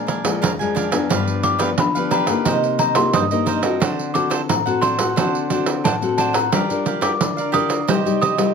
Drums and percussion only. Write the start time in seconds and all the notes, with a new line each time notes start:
0.08 pandeiro
0.25 pandeiro
0.43 pandeiro
0.61 pandeiro
0.77 pandeiro
0.92 pandeiro
1.10 pandeiro
1.28 pandeiro
1.43 pandeiro
1.59 pandeiro
1.78 pandeiro
1.96 pandeiro
2.11 pandeiro
2.27 pandeiro
2.45 pandeiro
2.64 pandeiro
2.79 pandeiro
2.95 pandeiro
3.13 pandeiro
3.31 pandeiro
3.47 pandeiro
3.63 pandeiro
3.81 pandeiro
3.99 pandeiro
4.15 pandeiro
4.31 pandeiro
4.49 pandeiro
4.67 pandeiro
4.82 pandeiro
4.99 pandeiro
5.17 pandeiro
5.35 pandeiro
5.50 pandeiro
5.66 pandeiro
5.85 pandeiro
6.02 pandeiro
6.18 pandeiro
6.34 pandeiro
6.52 pandeiro
6.70 pandeiro
6.86 pandeiro
7.02 pandeiro
7.21 pandeiro
7.38 pandeiro
7.54 pandeiro
7.70 pandeiro
7.88 pandeiro
8.07 pandeiro
8.22 pandeiro
8.38 pandeiro